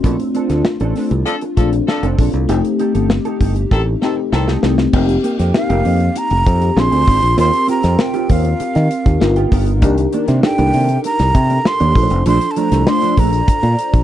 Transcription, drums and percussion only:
0.04 kick medium
0.04 closed hi-hat medium
0.20 closed hi-hat medium
0.35 closed hi-hat medium
0.50 snare soft
0.50 closed hi-hat medium
0.65 snare loud
0.80 closed hi-hat soft
0.96 snare soft
0.96 open hi-hat medium
1.11 closed hi-hat soft
1.26 closed hi-hat medium
1.41 closed hi-hat soft
1.57 kick medium
1.57 closed hi-hat medium
1.73 closed hi-hat soft
1.88 snare medium
2.03 closed hi-hat soft
2.19 kick medium
2.19 open hi-hat medium
2.33 closed hi-hat soft
2.49 closed hi-hat medium
2.65 closed hi-hat medium
2.79 closed hi-hat medium
2.95 closed hi-hat medium
3.10 snare loud
3.25 closed hi-hat soft
3.40 kick medium
3.40 open hi-hat medium
3.56 closed hi-hat soft
3.71 kick medium
3.71 snare medium
4.02 snare medium
4.32 snare medium
4.48 snare medium
4.63 snare medium
4.78 snare medium
4.93 kick loud
4.93 crash medium
5.09 closed hi-hat medium
5.24 closed hi-hat medium
5.39 snare soft
5.39 closed hi-hat medium
5.54 snare loud
5.70 closed hi-hat soft
5.85 open hi-hat medium
6.00 closed hi-hat soft
6.16 closed hi-hat medium
6.30 closed hi-hat soft
6.46 kick medium
6.46 closed hi-hat medium
6.62 closed hi-hat soft
6.77 snare loud
6.92 closed hi-hat soft
7.07 kick loud
7.07 open hi-hat medium
7.22 closed hi-hat soft
7.38 closed hi-hat loud
7.53 closed hi-hat medium
7.68 closed hi-hat medium
7.83 snare soft
7.83 closed hi-hat medium
7.99 snare loud
8.14 closed hi-hat soft
8.29 kick medium
8.29 open hi-hat medium
8.45 closed hi-hat medium
8.60 closed hi-hat medium
8.75 snare soft
8.75 closed hi-hat soft
8.91 closed hi-hat medium
9.06 kick medium
9.06 closed hi-hat soft
9.21 snare medium
9.36 closed hi-hat soft
9.52 kick medium
9.52 open hi-hat medium
9.66 closed hi-hat medium
9.82 kick loud
9.82 closed hi-hat medium
9.98 closed hi-hat medium
10.13 closed hi-hat medium
10.28 snare soft
10.28 closed hi-hat medium
10.43 snare loud
10.58 closed hi-hat soft
10.73 open hi-hat medium
10.89 closed hi-hat medium
11.04 closed hi-hat medium
11.19 snare soft
11.19 closed hi-hat soft
11.35 kick medium
11.35 closed hi-hat medium
11.50 closed hi-hat soft
11.65 snare loud
11.80 closed hi-hat soft
11.95 kick loud
11.95 open hi-hat medium
12.10 closed hi-hat medium
12.26 closed hi-hat loud
12.41 closed hi-hat medium
12.56 closed hi-hat medium
12.72 snare soft
12.72 closed hi-hat medium
12.87 snare loud
13.02 closed hi-hat soft
13.17 kick medium
13.17 open hi-hat medium
13.33 closed hi-hat soft
13.48 kick medium
13.48 closed hi-hat medium
13.63 closed hi-hat soft
13.79 closed hi-hat medium
13.94 kick medium
13.94 closed hi-hat soft

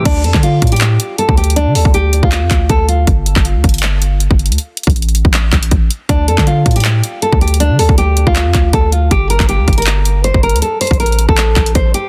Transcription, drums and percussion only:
0.05 kick loud
0.05 closed hi-hat medium
0.05 crash loud
0.24 closed hi-hat medium
0.34 kick loud
0.34 clap medium
0.43 closed hi-hat medium
0.62 kick loud
0.62 closed hi-hat medium
0.67 closed hi-hat medium
0.72 closed hi-hat medium
0.76 closed hi-hat medium
0.81 clap loud
0.81 closed hi-hat medium
1.00 closed hi-hat medium
1.18 closed hi-hat medium
1.29 kick medium
1.37 closed hi-hat soft
1.44 closed hi-hat medium
1.50 closed hi-hat medium
1.56 closed hi-hat medium
1.75 open hi-hat medium
1.85 kick loud
1.94 closed hi-hat medium
2.13 closed hi-hat medium
2.23 kick loud
2.32 clap loud
2.32 closed hi-hat medium
2.51 kick medium
2.51 clap medium
2.51 closed hi-hat medium
2.69 kick loud
2.69 closed hi-hat medium
2.89 closed hi-hat medium
3.07 kick loud
3.07 closed hi-hat medium
3.26 closed hi-hat medium
3.36 kick loud
3.36 clap medium
3.45 closed hi-hat medium
3.64 kick medium
3.64 closed hi-hat medium
3.69 closed hi-hat medium
3.74 closed hi-hat medium
3.78 closed hi-hat medium
3.83 clap loud
4.02 closed hi-hat medium
4.20 closed hi-hat medium
4.31 kick loud
4.39 closed hi-hat soft
4.46 closed hi-hat medium
4.52 closed hi-hat medium
4.58 closed hi-hat medium
4.77 closed hi-hat medium
4.77 open hi-hat medium
4.83 kick loud
4.83 closed hi-hat medium
4.90 closed hi-hat medium
4.96 closed hi-hat medium
5.02 closed hi-hat soft
5.09 closed hi-hat soft
5.15 closed hi-hat medium
5.25 kick loud
5.34 clap loud
5.34 closed hi-hat medium
5.53 kick loud
5.53 clap medium
5.53 closed hi-hat medium
5.63 closed hi-hat medium
5.71 kick loud
5.71 closed hi-hat medium
5.91 closed hi-hat medium
6.09 kick loud
6.09 closed hi-hat medium
6.28 closed hi-hat medium
6.38 kick loud
6.38 clap medium
6.47 closed hi-hat medium
6.66 kick medium
6.66 closed hi-hat medium
6.71 closed hi-hat medium
6.76 closed hi-hat medium
6.80 closed hi-hat medium
6.85 clap loud
7.04 closed hi-hat medium
7.22 closed hi-hat medium
7.32 kick loud
7.41 closed hi-hat soft
7.48 closed hi-hat medium
7.54 closed hi-hat medium
7.60 closed hi-hat medium
7.79 open hi-hat medium
7.89 kick loud
7.98 closed hi-hat medium
8.17 closed hi-hat medium
8.27 kick loud
8.36 clap loud
8.36 closed hi-hat medium
8.54 kick medium
8.54 clap medium
8.54 closed hi-hat medium
8.73 kick medium
8.73 closed hi-hat medium
8.92 closed hi-hat medium
9.11 kick loud
9.11 closed hi-hat medium
9.30 closed hi-hat medium
9.40 kick loud
9.40 clap medium
9.49 closed hi-hat medium
9.68 kick loud
9.68 closed hi-hat medium
9.73 closed hi-hat medium
9.78 closed hi-hat medium
9.82 closed hi-hat medium
9.86 clap loud
9.86 closed hi-hat medium
10.05 closed hi-hat medium
10.24 closed hi-hat medium
10.34 kick loud
10.43 closed hi-hat soft
10.49 closed hi-hat medium
10.56 closed hi-hat medium
10.62 closed hi-hat medium
10.81 closed hi-hat medium
10.81 open hi-hat medium
10.87 kick loud
10.87 closed hi-hat medium
10.93 closed hi-hat medium
11.00 closed hi-hat medium
11.06 closed hi-hat soft
11.12 closed hi-hat soft
11.19 closed hi-hat medium
11.29 kick loud
11.37 clap loud
11.37 closed hi-hat medium
11.56 kick loud
11.56 clap medium
11.56 closed hi-hat medium
11.66 closed hi-hat medium
11.75 kick loud
11.75 closed hi-hat medium
11.94 closed hi-hat medium

